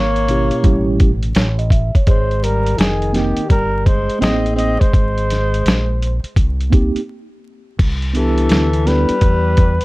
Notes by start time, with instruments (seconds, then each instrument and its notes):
Already playing: fingered electric bass G#1, tenor saxophone A#3, flugelhorn C#5
0.16 closed hi-hat
0.27 tine electric piano B2 C#4 E4 G4, closed hi-hat
0.51 muted fingered electric bass stroke, closed hi-hat
0.63 fingered electric bass A1, tine electric piano G3 C#4 E4 G4, kick, closed hi-hat
1.00 kick, closed hi-hat
1.23 closed hi-hat
1.35 fingered electric bass A1, tine electric piano C#5, snare, closed hi-hat
1.59 tine electric piano D#5, closed hi-hat
1.70 tine electric piano E5, kick, closed hi-hat
1.95 tine electric piano C#5, kick, closed hi-hat
2.07 fingered electric bass G#1, tenor saxophone G#3, flugelhorn C5, kick, closed hi-hat
2.31 closed hi-hat
2.42 tenor saxophone G3, flugelhorn A#4, closed hi-hat
2.66 closed hi-hat
2.77 fingered electric bass F1, tenor saxophone D#3, flugelhorn G#4, snare, closed hi-hat
3.02 closed hi-hat
3.13 tenor saxophone D#3, tine electric piano A#3 C4 D#4 G4, flugelhorn G4, snare, closed hi-hat
3.37 muted fingered electric bass stroke, closed hi-hat
3.49 fingered electric bass G1, tenor saxophone G3, flugelhorn A#4, kick, closed hi-hat
3.85 tenor saxophone G#3, flugelhorn C5, kick, closed hi-hat
4.09 muted fingered electric bass stroke, closed hi-hat
4.19 fingered electric bass A1, tine electric piano A#3 C4 D#4 G#4, tenor saxophone C4, flugelhorn D#5, closed hi-hat
4.24 snare
4.46 closed hi-hat
4.56 tenor saxophone C4, flugelhorn D#5, closed hi-hat
4.79 tenor saxophone G#3, flugelhorn C5, muted fingered electric bass stroke, kick, closed hi-hat
4.93 fingered electric bass G#1, kick, closed hi-hat
5.18 closed hi-hat
5.30 snare, closed hi-hat
5.54 closed hi-hat
5.65 fingered electric bass A#1, snare, closed hi-hat
6.02 closed hi-hat
6.23 muted fingered electric bass stroke, closed hi-hat
6.36 fingered electric bass C2, kick, closed hi-hat
6.61 closed hi-hat
6.70 tine electric piano A#3 C4 D#4 G4, kick, closed hi-hat
6.95 muted fingered electric bass stroke, closed hi-hat
7.79 fingered electric bass C2, kick, closed hi-hat, crash
8.02 closed hi-hat
8.13 tenor saxophone E3, tine electric piano B3 D4 E4 G4, flugelhorn A4, closed hi-hat
8.38 closed hi-hat
8.49 fingered electric bass D2, snare, closed hi-hat
8.73 closed hi-hat
8.85 tenor saxophone G3, tine electric piano B3 D4 E4 A4, flugelhorn B4, snare, closed hi-hat
9.09 closed hi-hat
9.21 fingered electric bass E2, kick, closed hi-hat
9.57 kick, closed hi-hat
9.81 muted fingered electric bass stroke, closed hi-hat